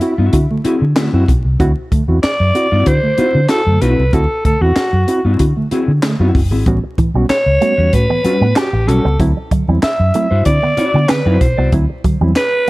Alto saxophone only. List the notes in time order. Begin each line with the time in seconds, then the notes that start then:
Already playing: E4
2.23 D5
2.88 C5
3.50 A4
3.82 B4
4.14 A4
4.46 A4
4.62 F#4
7.30 C#5
7.93 B4
8.57 G4
8.88 A4
9.84 E5
10.46 D5
11.09 B4
11.41 C5
12.37 B4